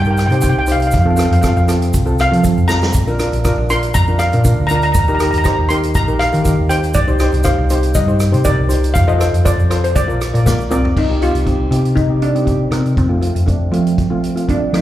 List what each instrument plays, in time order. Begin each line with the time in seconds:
Already playing: fingered electric bass G2
0.02 steel pan G5, shaker
0.07 steel pan D#4 G4 A#4
0.11 steel pan G5
0.17 steel pan G5, cross-stick, closed hi-hat, shaker
0.26 steel pan G5, shaker
0.30 fingered electric bass C3, steel pan D#4 G4 C5 G5, closed hi-hat
0.41 steel pan D#4 G4 C5 G5, kick, closed hi-hat, shaker
0.49 steel pan G5
0.55 fingered electric bass C2, steel pan G5
0.66 steel pan D#4 G4 C5, closed hi-hat, shaker
0.72 steel pan F5
0.80 steel pan F5, closed hi-hat, shaker
0.87 steel pan F5
0.91 fingered electric bass F2, steel pan F5, kick, closed hi-hat, shaker
1.01 steel pan F5
1.05 steel pan C4 F4 A4
1.10 steel pan F5
1.17 steel pan C4 F4 A4 F5, cross-stick, closed hi-hat, shaker
1.25 steel pan F5
1.31 fingered electric bass F2, steel pan F5, closed hi-hat
1.42 steel pan C4 F4 A4 F5, kick, cross-stick, closed hi-hat, shaker
1.49 steel pan F5
1.56 fingered electric bass F2, steel pan F5, shaker
1.68 steel pan C4 F4 A4, cross-stick, closed hi-hat, shaker
1.82 closed hi-hat, shaker
1.93 fingered electric bass C2, kick, closed hi-hat, shaker
2.06 steel pan C4 F4 A4, shaker
2.19 steel pan F5, cross-stick, closed hi-hat, shaker
2.31 fingered electric bass F3, steel pan C4 F4 A4, closed hi-hat
2.43 steel pan C4 F4 A4, kick, closed hi-hat, shaker
2.57 fingered electric bass F2, shaker
2.68 steel pan C4 F4 A4 A#5, snare, shaker
2.82 snare, shaker
2.93 fingered electric bass A#1, kick, closed hi-hat, shaker
3.07 steel pan D4 F4 A#4, shaker
3.19 steel pan D4 F4 A#4, cross-stick, closed hi-hat, shaker
3.32 fingered electric bass A#1, closed hi-hat, shaker
3.45 steel pan D4 F4 A#4, kick, cross-stick, closed hi-hat, shaker
3.58 fingered electric bass A#1
3.70 steel pan D4 F4 A#4 C6, closed hi-hat, shaker
3.83 closed hi-hat, shaker
3.94 fingered electric bass F2, steel pan A#5, kick, closed hi-hat, shaker
4.07 steel pan D4 F4 A#4, shaker
4.19 steel pan F5, cross-stick, closed hi-hat, shaker
4.32 fingered electric bass A#2, steel pan D4 F4 A#4, closed hi-hat, shaker
4.44 steel pan D4 F4 A#4, kick, closed hi-hat, shaker
4.59 fingered electric bass D2
4.67 steel pan D4 A#5, closed hi-hat, shaker
4.71 steel pan F4 A#4
4.76 steel pan A#5
4.82 steel pan A#5, closed hi-hat, shaker
4.92 fingered electric bass D#2, steel pan A#5, kick, closed hi-hat, shaker
4.99 steel pan A#5
5.08 steel pan D#4 G4 A#4 A#5, shaker
5.15 steel pan A#5
5.20 steel pan D#4 G4 A#4 A#5, cross-stick, closed hi-hat, shaker
5.31 fingered electric bass D#2, steel pan A#5, closed hi-hat, shaker
5.38 steel pan A#5
5.44 steel pan D#4 G4 C5 A#5, kick, cross-stick, closed hi-hat, shaker
5.53 steel pan A#5
5.59 fingered electric bass D#2
5.69 steel pan D#4 G4 A#4 C6, closed hi-hat, shaker
5.83 closed hi-hat, shaker
5.95 fingered electric bass A#1, steel pan A#5, kick, closed hi-hat, shaker
6.08 steel pan D#4 G4 A#4, shaker
6.19 steel pan F5, cross-stick, closed hi-hat
6.33 fingered electric bass D#3, steel pan D#4 G4 A#4, closed hi-hat, shaker
6.44 steel pan D#4 G4 A#4, kick, closed hi-hat, shaker
6.59 fingered electric bass D#2
6.69 steel pan D#4 G4 C5 G5, closed hi-hat, shaker
6.83 closed hi-hat, shaker
6.94 fingered electric bass C2, steel pan D5, kick, closed hi-hat, shaker
7.08 steel pan D#4 G4 C5, shaker
7.19 steel pan D#4 G4 C5, cross-stick, closed hi-hat, shaker
7.32 fingered electric bass C2, closed hi-hat, shaker
7.44 steel pan D#4 G4 C5 F5, kick, cross-stick, closed hi-hat, shaker
7.58 fingered electric bass C2
7.70 steel pan D#4 G4 C5, closed hi-hat, shaker
7.83 closed hi-hat, shaker
7.94 fingered electric bass G2, steel pan D#5, kick, closed hi-hat, shaker
8.08 steel pan D#4 G4 C5, shaker
8.20 cross-stick, closed hi-hat, shaker
8.32 fingered electric bass C3, steel pan D#4 G4 C5, closed hi-hat, shaker
8.44 steel pan D#4 G4 A#4 D5, kick, closed hi-hat, shaker
8.59 fingered electric bass C2
8.69 steel pan D#4 G4 C5, closed hi-hat, shaker
8.84 closed hi-hat, shaker
8.94 fingered electric bass F2, steel pan F5, kick, closed hi-hat, shaker
9.07 steel pan F4 A4 C5 D#5, shaker
9.18 steel pan F4 A4 C5, cross-stick, closed hi-hat, shaker
9.33 fingered electric bass F2, closed hi-hat, shaker
9.45 steel pan F4 A4 C5 D5, kick, cross-stick, closed hi-hat, shaker
9.58 fingered electric bass F2, shaker
9.70 steel pan F4 A4 C5, cross-stick, closed hi-hat, shaker
9.84 steel pan C5, closed hi-hat, shaker
9.96 fingered electric bass A#1, steel pan D5, kick, closed hi-hat, shaker
10.08 steel pan F4 A#4 D5, shaker
10.21 cross-stick, closed hi-hat, shaker
10.33 fingered electric bass A#2, steel pan F4 A#4 D5, closed hi-hat, shaker
10.46 fingered electric bass A#1, steel pan A#3 F4 A#4 D5, kick, snare, shaker
10.60 shaker
10.70 fingered electric bass C2, steel pan C4 F4 A#4 D5, mid tom, shaker
10.85 floor tom
10.96 fingered electric bass C2, steel pan D#4, kick, crash
11.10 steel pan C4 D#4 G4
11.21 steel pan C4 D#4 F4 G4, closed hi-hat
11.34 fingered electric bass C2, closed hi-hat
11.46 steel pan C4 D#4 G4, kick, closed hi-hat
11.71 fingered electric bass C3, steel pan C4 D#4 G4, closed hi-hat
11.85 closed hi-hat
11.96 steel pan D#4, kick, closed hi-hat
12.09 steel pan C4 D#4 G4
12.22 steel pan D4, closed hi-hat
12.35 steel pan C4 D#4 G4, closed hi-hat
12.45 steel pan C4 D#4 G4, kick, closed hi-hat
12.71 fingered electric bass C3, steel pan C4 D#4 A#4, cross-stick, closed hi-hat
12.86 closed hi-hat
12.97 fingered electric bass F2, steel pan C4, kick, closed hi-hat
13.09 steel pan A3 C4 F4
13.21 steel pan A3 C4 F4, closed hi-hat
13.35 fingered electric bass F2, closed hi-hat
13.46 steel pan A3 C4 D4, kick, closed hi-hat
13.71 fingered electric bass F3, steel pan A3 C4 F4, closed hi-hat
13.87 closed hi-hat
13.98 kick, closed hi-hat
14.10 steel pan A3 C4 F4
14.24 closed hi-hat
14.35 steel pan A3 C4 F4, closed hi-hat
14.48 steel pan A3 C4 D4 F4, kick, closed hi-hat
14.73 fingered electric bass F3, steel pan A3 C4 D#4 F4, cross-stick, closed hi-hat